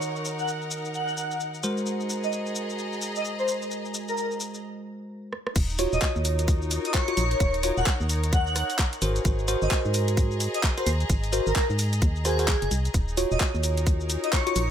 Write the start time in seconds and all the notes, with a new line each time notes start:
Already playing: D#3 D#4 F#4 A#4 C#5 F#5
0.02 shaker
0.16 shaker
0.25 shaker
0.39 F#5, shaker
0.48 shaker
0.62 shaker
0.71 shaker
0.85 shaker
0.94 F#5, shaker
1.08 shaker
1.17 shaker
1.31 shaker
1.40 shaker
1.54 shaker
1.63 G#3 F#4 G#4 A#4 C5, shaker
1.77 D#5, shaker
1.86 shaker
1.99 A#5, shaker
2.10 shaker
2.24 D#5, shaker
2.33 shaker
2.46 shaker
2.56 shaker
2.70 shaker
2.79 shaker
2.93 shaker
3.02 shaker
3.16 D#5, shaker
3.25 shaker
3.39 C5, shaker
3.48 shaker
3.62 shaker
3.71 shaker
3.85 shaker
3.94 shaker
4.08 A#4, shaker
4.17 A#4, shaker
4.31 shaker
4.40 shaker
4.54 shaker
5.33 cross-stick
5.47 cross-stick
5.56 D#1 D#4, kick, closed hi-hat, crash, shaker
5.70 shaker
5.79 F4 F#4 C#5, cross-stick, open hi-hat, shaker
5.93 D#1 D#5, shaker
6.02 kick, clap, shaker
6.10 A#4
6.16 D#2, shaker
6.25 open hi-hat, shaker
6.39 C#5, closed hi-hat, shaker
6.48 kick, open hi-hat, shaker
6.62 shaker
6.71 open hi-hat, shaker
6.85 D#5, closed hi-hat, shaker
6.94 C#5, kick, clap, shaker
7.08 F4 F#4 C#5, closed hi-hat, shaker
7.17 A#1, open hi-hat, shaker
7.31 closed hi-hat, shaker
7.40 D#1, kick, closed hi-hat, shaker
7.54 closed hi-hat, shaker
7.63 F4 F#4 C#5, cross-stick, open hi-hat, shaker
7.77 D#1 F#5, shaker
7.86 kick, clap, shaker
8.00 D#2, shaker
8.09 open hi-hat, shaker
8.24 closed hi-hat, shaker
8.33 F#5, kick, closed hi-hat, shaker
8.47 shaker
8.56 cross-stick, open hi-hat, shaker
8.70 open hi-hat, shaker
8.79 kick, clap, shaker
8.93 closed hi-hat, shaker
9.02 G#1 F#4 G#4 A#4 C5, open hi-hat, shaker
9.16 closed hi-hat, shaker
9.25 G#1, kick, closed hi-hat, shaker
9.34 D#5
9.39 shaker
9.48 F#4 A#4 C5, cross-stick, open hi-hat, shaker
9.62 G#1 D#5, shaker
9.71 kick, clap, shaker
9.82 G#2 A#5, shaker
9.94 open hi-hat, shaker
10.08 closed hi-hat, shaker
10.17 kick, open hi-hat, shaker
10.31 shaker
10.40 open hi-hat, shaker
10.54 D#5, closed hi-hat, shaker
10.63 kick, clap, shaker
10.77 F#4 A#4 C5, closed hi-hat, shaker
10.86 D#2, open hi-hat, shaker
11.01 closed hi-hat, shaker
11.10 G#1, kick, closed hi-hat, shaker
11.24 closed hi-hat, shaker
11.33 F#4 A#4 C5, cross-stick, open hi-hat, shaker
11.47 G#1 A#4, shaker
11.55 A#4, kick, clap, shaker
11.70 G#2, shaker
11.79 open hi-hat, shaker
11.93 closed hi-hat, shaker
12.02 D#2, kick, closed hi-hat, shaker
12.16 shaker
12.25 F#4 G#4 A#4 C5, cross-stick, open hi-hat, shaker
12.39 F#4 A#4 C5, open hi-hat, shaker
12.48 kick, clap, shaker
12.62 F#1, closed hi-hat, shaker
12.71 C2, open hi-hat, shaker
12.85 closed hi-hat, shaker
12.94 D#1 D#4, kick, closed hi-hat, shaker
13.08 shaker
13.17 F4 F#4 C#5, cross-stick, open hi-hat, shaker
13.31 D#1 D#5, shaker
13.38 A#4, kick, clap, shaker
13.54 D#2, shaker
13.63 open hi-hat, shaker
13.77 C#5, closed hi-hat, shaker
13.87 kick, open hi-hat, shaker
14.00 shaker
14.10 open hi-hat, shaker
14.24 D#5, closed hi-hat, shaker
14.33 C#5, kick, clap, shaker
14.47 F4 F#4 C#5, closed hi-hat, shaker
14.56 A#1, open hi-hat, shaker